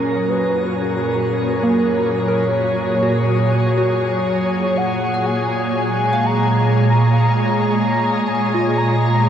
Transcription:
0.00 5.73 F#2 medium
0.00 9.29 A#2 medium
0.00 5.79 F#3 medium
0.00 0.98 C#4 medium
0.00 1.83 C#4 medium
0.00 9.29 G#4 medium
0.00 0.31 A#4 medium
0.29 0.81 B4 medium
0.29 9.29 C#5 medium
0.80 1.78 A#4 medium
1.63 5.17 A#3 medium
1.79 2.31 A#4 loud
2.28 3.23 A#4 medium
2.28 3.77 C#5 loud
3.03 3.76 F#4 medium
3.77 7.32 F#4 medium
3.77 4.79 C#5 loud
4.77 5.27 F#5 loud
5.14 6.33 G#5 medium
5.26 5.76 G#5 loud
5.77 9.29 A#2 medium
5.77 9.29 G#3 medium
5.77 6.28 G#5 loud
6.13 9.29 F5 medium
6.26 7.77 A#5 loud
7.77 8.29 A#5 loud
8.27 8.79 G#5 loud
8.54 9.29 F4 medium
8.77 9.29 A#5 loud

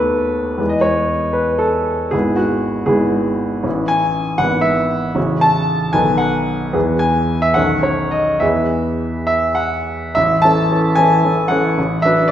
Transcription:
0.00 0.63 D#2 soft
0.00 0.63 A3 soft
0.00 0.58 B3 soft
0.00 0.62 F#4 soft
0.00 0.62 A4 medium
0.00 0.71 B4 medium
0.58 2.08 E2 soft
0.58 2.08 G#3 soft
0.58 2.08 B3 soft
0.58 2.09 E4 soft
0.69 0.84 D#5 medium
0.81 1.34 C#5 medium
1.33 1.60 B4 soft
1.58 2.12 A4 medium
2.11 2.85 G#1 soft
2.11 2.86 G#3 soft
2.11 2.86 B3 soft
2.11 2.86 E4 soft
2.11 2.37 G#4 medium
2.36 2.87 F#4 medium
2.86 3.62 G#1 soft
2.86 3.62 G#3 soft
2.86 3.62 B3 soft
2.86 3.62 E4 soft
2.86 3.64 G#4 medium
3.63 4.37 A1 soft
3.63 4.37 E3 soft
3.63 4.37 C#4 soft
3.63 4.38 E4 soft
3.88 4.39 G#5 medium
4.38 5.13 G#1 soft
4.38 5.13 E3 soft
4.38 5.14 B3 soft
4.38 5.14 E4 soft
4.38 4.64 F#5 medium
4.61 5.14 E5 medium
5.15 5.91 A1 soft
5.15 5.92 C#3 soft
5.15 5.92 C#4 soft
5.15 5.92 F#4 soft
5.41 5.94 A5 medium
5.93 6.71 B1 soft
5.93 6.71 D#3 soft
5.93 6.72 B3 soft
5.93 6.72 A4 soft
5.93 6.20 G#5 medium
6.18 6.73 F#5 medium
6.73 7.53 E2 soft
6.73 7.54 E3 soft
6.73 7.54 B3 soft
6.73 7.54 G#4 soft
6.99 7.42 G#5 medium
7.42 7.56 E5 medium
7.54 8.39 B1 soft
7.54 8.39 D#3 soft
7.54 8.39 C#4 soft
7.54 8.39 A4 soft
7.54 7.83 F#5 medium
7.83 8.12 C#5 medium
8.11 8.41 D#5 medium
8.40 10.11 E2 soft
8.40 10.12 E3 soft
8.40 10.12 B3 soft
8.40 10.12 G#4 soft
8.40 9.25 E5 medium
9.27 9.56 E5 medium
9.55 10.15 F#5 medium
10.15 10.43 A1 soft
10.15 10.43 E5 medium
10.42 10.68 E3 soft
10.42 10.68 C#4 soft
10.42 10.68 A4 soft
10.42 10.96 A5 medium
10.72 10.95 E3 soft
10.72 10.95 C#4 soft
10.72 10.96 A4 soft
10.95 11.21 E3 soft
10.95 11.22 C#4 soft
10.95 11.22 A4 soft
10.95 11.49 G#5 medium
11.25 11.48 E3 soft
11.25 11.48 C#4 soft
11.25 11.49 A4 soft
11.48 11.75 E3 soft
11.48 11.75 C#4 soft
11.48 11.75 A4 soft
11.48 12.03 F#5 medium
11.78 12.04 A1 soft
12.02 12.28 F#3 soft
12.02 12.28 D4 soft
12.02 12.28 B4 soft
12.02 12.29 E5 medium
12.28 12.31 D5 medium

